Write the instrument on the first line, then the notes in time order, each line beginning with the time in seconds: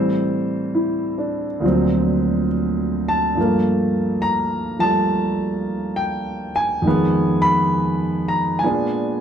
grand piano
Already playing: A2 E3 G3 C4 C5
0.75 E4
1.18 D4
1.60 D2 A#2 F3 F#3
1.65 C4
3.08 A5
3.35 G2 F3 A3
3.40 A#3
4.22 A#5
4.79 F3 G3 A5
4.83 A3
5.96 G5
6.56 G#5
6.82 F2 D#3 G#3
6.87 B3
7.42 B5
8.28 A#5
8.59 A#2 G#5
8.63 G#3 B3 D4